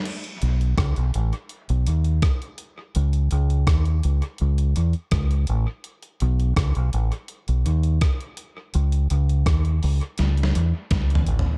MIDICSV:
0, 0, Header, 1, 3, 480
1, 0, Start_track
1, 0, Tempo, 723764
1, 36, Time_signature, 4, 2, 24, 8
1, 7679, End_track
2, 0, Start_track
2, 0, Title_t, "Fingered electric bass"
2, 0, Program_c, 0, 33
2, 282, Note_on_c, 0, 35, 92
2, 495, Note_off_c, 0, 35, 0
2, 518, Note_on_c, 0, 37, 85
2, 627, Note_off_c, 0, 37, 0
2, 645, Note_on_c, 0, 35, 85
2, 748, Note_off_c, 0, 35, 0
2, 764, Note_on_c, 0, 33, 84
2, 870, Note_off_c, 0, 33, 0
2, 1126, Note_on_c, 0, 35, 88
2, 1228, Note_off_c, 0, 35, 0
2, 1243, Note_on_c, 0, 39, 93
2, 1455, Note_off_c, 0, 39, 0
2, 1964, Note_on_c, 0, 37, 99
2, 2176, Note_off_c, 0, 37, 0
2, 2202, Note_on_c, 0, 37, 95
2, 2415, Note_off_c, 0, 37, 0
2, 2437, Note_on_c, 0, 39, 88
2, 2652, Note_off_c, 0, 39, 0
2, 2684, Note_on_c, 0, 37, 91
2, 2790, Note_off_c, 0, 37, 0
2, 2927, Note_on_c, 0, 37, 96
2, 3137, Note_off_c, 0, 37, 0
2, 3163, Note_on_c, 0, 40, 90
2, 3269, Note_off_c, 0, 40, 0
2, 3399, Note_on_c, 0, 37, 94
2, 3613, Note_off_c, 0, 37, 0
2, 3642, Note_on_c, 0, 33, 89
2, 3749, Note_off_c, 0, 33, 0
2, 4124, Note_on_c, 0, 35, 108
2, 4336, Note_off_c, 0, 35, 0
2, 4357, Note_on_c, 0, 37, 81
2, 4466, Note_off_c, 0, 37, 0
2, 4485, Note_on_c, 0, 35, 85
2, 4587, Note_off_c, 0, 35, 0
2, 4601, Note_on_c, 0, 33, 82
2, 4708, Note_off_c, 0, 33, 0
2, 4965, Note_on_c, 0, 35, 79
2, 5067, Note_off_c, 0, 35, 0
2, 5080, Note_on_c, 0, 39, 101
2, 5293, Note_off_c, 0, 39, 0
2, 5803, Note_on_c, 0, 37, 100
2, 6015, Note_off_c, 0, 37, 0
2, 6041, Note_on_c, 0, 37, 89
2, 6254, Note_off_c, 0, 37, 0
2, 6279, Note_on_c, 0, 39, 80
2, 6493, Note_off_c, 0, 39, 0
2, 6524, Note_on_c, 0, 37, 89
2, 6630, Note_off_c, 0, 37, 0
2, 6761, Note_on_c, 0, 37, 90
2, 6974, Note_off_c, 0, 37, 0
2, 7001, Note_on_c, 0, 40, 89
2, 7108, Note_off_c, 0, 40, 0
2, 7239, Note_on_c, 0, 37, 91
2, 7453, Note_off_c, 0, 37, 0
2, 7480, Note_on_c, 0, 33, 87
2, 7587, Note_off_c, 0, 33, 0
2, 7679, End_track
3, 0, Start_track
3, 0, Title_t, "Drums"
3, 36, Note_on_c, 9, 42, 82
3, 36, Note_on_c, 9, 49, 84
3, 102, Note_off_c, 9, 42, 0
3, 102, Note_off_c, 9, 49, 0
3, 158, Note_on_c, 9, 42, 48
3, 224, Note_off_c, 9, 42, 0
3, 276, Note_on_c, 9, 42, 74
3, 342, Note_off_c, 9, 42, 0
3, 404, Note_on_c, 9, 42, 34
3, 470, Note_off_c, 9, 42, 0
3, 515, Note_on_c, 9, 36, 118
3, 518, Note_on_c, 9, 37, 127
3, 518, Note_on_c, 9, 42, 76
3, 581, Note_off_c, 9, 36, 0
3, 584, Note_off_c, 9, 37, 0
3, 584, Note_off_c, 9, 42, 0
3, 639, Note_on_c, 9, 42, 55
3, 705, Note_off_c, 9, 42, 0
3, 756, Note_on_c, 9, 42, 85
3, 822, Note_off_c, 9, 42, 0
3, 880, Note_on_c, 9, 42, 35
3, 947, Note_off_c, 9, 42, 0
3, 991, Note_on_c, 9, 42, 75
3, 1057, Note_off_c, 9, 42, 0
3, 1120, Note_on_c, 9, 42, 51
3, 1186, Note_off_c, 9, 42, 0
3, 1237, Note_on_c, 9, 42, 83
3, 1303, Note_off_c, 9, 42, 0
3, 1356, Note_on_c, 9, 42, 35
3, 1422, Note_off_c, 9, 42, 0
3, 1474, Note_on_c, 9, 42, 73
3, 1475, Note_on_c, 9, 36, 109
3, 1478, Note_on_c, 9, 37, 93
3, 1540, Note_off_c, 9, 42, 0
3, 1541, Note_off_c, 9, 36, 0
3, 1545, Note_off_c, 9, 37, 0
3, 1604, Note_on_c, 9, 42, 55
3, 1670, Note_off_c, 9, 42, 0
3, 1710, Note_on_c, 9, 42, 77
3, 1777, Note_off_c, 9, 42, 0
3, 1956, Note_on_c, 9, 42, 86
3, 2022, Note_off_c, 9, 42, 0
3, 2077, Note_on_c, 9, 42, 45
3, 2143, Note_off_c, 9, 42, 0
3, 2194, Note_on_c, 9, 42, 79
3, 2260, Note_off_c, 9, 42, 0
3, 2321, Note_on_c, 9, 42, 34
3, 2388, Note_off_c, 9, 42, 0
3, 2434, Note_on_c, 9, 36, 116
3, 2436, Note_on_c, 9, 37, 114
3, 2436, Note_on_c, 9, 42, 87
3, 2500, Note_off_c, 9, 36, 0
3, 2502, Note_off_c, 9, 42, 0
3, 2503, Note_off_c, 9, 37, 0
3, 2557, Note_on_c, 9, 42, 54
3, 2623, Note_off_c, 9, 42, 0
3, 2675, Note_on_c, 9, 42, 75
3, 2742, Note_off_c, 9, 42, 0
3, 2799, Note_on_c, 9, 42, 35
3, 2865, Note_off_c, 9, 42, 0
3, 2907, Note_on_c, 9, 42, 76
3, 2973, Note_off_c, 9, 42, 0
3, 3038, Note_on_c, 9, 42, 57
3, 3104, Note_off_c, 9, 42, 0
3, 3155, Note_on_c, 9, 42, 82
3, 3222, Note_off_c, 9, 42, 0
3, 3272, Note_on_c, 9, 42, 36
3, 3338, Note_off_c, 9, 42, 0
3, 3391, Note_on_c, 9, 42, 72
3, 3394, Note_on_c, 9, 36, 100
3, 3395, Note_on_c, 9, 37, 94
3, 3457, Note_off_c, 9, 42, 0
3, 3460, Note_off_c, 9, 36, 0
3, 3462, Note_off_c, 9, 37, 0
3, 3520, Note_on_c, 9, 42, 58
3, 3586, Note_off_c, 9, 42, 0
3, 3628, Note_on_c, 9, 42, 77
3, 3694, Note_off_c, 9, 42, 0
3, 3873, Note_on_c, 9, 42, 84
3, 3939, Note_off_c, 9, 42, 0
3, 3996, Note_on_c, 9, 42, 41
3, 4062, Note_off_c, 9, 42, 0
3, 4114, Note_on_c, 9, 42, 76
3, 4180, Note_off_c, 9, 42, 0
3, 4242, Note_on_c, 9, 42, 36
3, 4308, Note_off_c, 9, 42, 0
3, 4354, Note_on_c, 9, 36, 112
3, 4356, Note_on_c, 9, 42, 93
3, 4357, Note_on_c, 9, 37, 113
3, 4420, Note_off_c, 9, 36, 0
3, 4422, Note_off_c, 9, 42, 0
3, 4423, Note_off_c, 9, 37, 0
3, 4477, Note_on_c, 9, 42, 58
3, 4543, Note_off_c, 9, 42, 0
3, 4595, Note_on_c, 9, 42, 77
3, 4662, Note_off_c, 9, 42, 0
3, 4720, Note_on_c, 9, 42, 39
3, 4786, Note_off_c, 9, 42, 0
3, 4830, Note_on_c, 9, 42, 79
3, 4896, Note_off_c, 9, 42, 0
3, 4959, Note_on_c, 9, 42, 53
3, 5025, Note_off_c, 9, 42, 0
3, 5078, Note_on_c, 9, 42, 78
3, 5144, Note_off_c, 9, 42, 0
3, 5195, Note_on_c, 9, 42, 35
3, 5262, Note_off_c, 9, 42, 0
3, 5313, Note_on_c, 9, 42, 75
3, 5315, Note_on_c, 9, 36, 95
3, 5317, Note_on_c, 9, 37, 94
3, 5379, Note_off_c, 9, 42, 0
3, 5381, Note_off_c, 9, 36, 0
3, 5384, Note_off_c, 9, 37, 0
3, 5441, Note_on_c, 9, 42, 54
3, 5508, Note_off_c, 9, 42, 0
3, 5551, Note_on_c, 9, 42, 83
3, 5617, Note_off_c, 9, 42, 0
3, 5794, Note_on_c, 9, 42, 81
3, 5860, Note_off_c, 9, 42, 0
3, 5918, Note_on_c, 9, 42, 42
3, 5984, Note_off_c, 9, 42, 0
3, 6036, Note_on_c, 9, 42, 82
3, 6102, Note_off_c, 9, 42, 0
3, 6164, Note_on_c, 9, 42, 33
3, 6230, Note_off_c, 9, 42, 0
3, 6275, Note_on_c, 9, 36, 118
3, 6278, Note_on_c, 9, 37, 112
3, 6278, Note_on_c, 9, 42, 85
3, 6341, Note_off_c, 9, 36, 0
3, 6344, Note_off_c, 9, 37, 0
3, 6344, Note_off_c, 9, 42, 0
3, 6399, Note_on_c, 9, 42, 54
3, 6465, Note_off_c, 9, 42, 0
3, 6517, Note_on_c, 9, 46, 54
3, 6583, Note_off_c, 9, 46, 0
3, 6641, Note_on_c, 9, 42, 37
3, 6708, Note_off_c, 9, 42, 0
3, 6749, Note_on_c, 9, 42, 82
3, 6758, Note_on_c, 9, 38, 59
3, 6815, Note_off_c, 9, 42, 0
3, 6824, Note_off_c, 9, 38, 0
3, 6880, Note_on_c, 9, 42, 53
3, 6919, Note_on_c, 9, 38, 63
3, 6947, Note_off_c, 9, 42, 0
3, 6985, Note_off_c, 9, 38, 0
3, 6998, Note_on_c, 9, 42, 82
3, 7065, Note_off_c, 9, 42, 0
3, 7233, Note_on_c, 9, 42, 76
3, 7235, Note_on_c, 9, 36, 106
3, 7238, Note_on_c, 9, 38, 73
3, 7299, Note_off_c, 9, 42, 0
3, 7301, Note_off_c, 9, 36, 0
3, 7305, Note_off_c, 9, 38, 0
3, 7363, Note_on_c, 9, 42, 56
3, 7397, Note_on_c, 9, 43, 96
3, 7430, Note_off_c, 9, 42, 0
3, 7463, Note_off_c, 9, 43, 0
3, 7471, Note_on_c, 9, 42, 75
3, 7537, Note_off_c, 9, 42, 0
3, 7555, Note_on_c, 9, 43, 96
3, 7622, Note_off_c, 9, 43, 0
3, 7679, End_track
0, 0, End_of_file